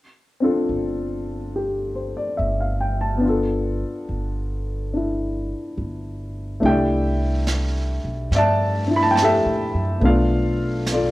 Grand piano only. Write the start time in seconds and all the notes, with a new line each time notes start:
0.40 C4 D4 F4 A4
1.56 G4
1.95 C5
2.17 D5
2.37 E5
2.60 F5
2.81 G5
3.01 A5
3.17 B3 D4
3.25 F4
3.29 A4
4.93 D4 E4
6.60 A3 D4 E4
6.65 G4 D5 E5 G5
8.35 D5 E5 A5
8.87 D4 E4
8.96 B5
9.03 A5
9.11 G5
9.15 A5
9.23 G4 A4 E5
10.00 A3 B3 D4
10.04 F4 A4 D5 F5
10.92 F4 A4 D5